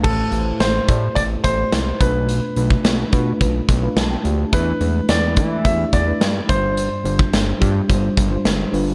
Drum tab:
CC |x---------------|----------------|----------------|----------------|
HH |--x-x-x-x-x-x-x-|x-x-x-x-x-x-x-x-|x-x-x-x-x-x-x-x-|x-x-x-x-x-x-x-o-|
SD |----o-------o---|----o-------o---|----o-------o---|----o-------o---|
BD |o-----o-o-o---o-|---o--o-o-o-----|o-----o-o-o---o-|---o--o-o-o-----|